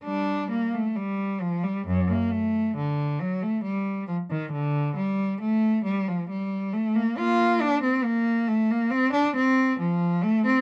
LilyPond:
\new Staff \with { instrumentName = "Cello" } { \time 4/4 \key g \minor \tempo 4 = 68 <g d'>8 bes16 a16 g8 f16 g16 fis,16 bes16 a8 d8 fis16 a16 | g8 f16 ees16 d8 g8 a8 g16 f16 g8 a16 bes16 | <bes f'>8 d'16 c'16 bes8 a16 bes16 c'16 d'16 c'8 f8 a16 c'16 | }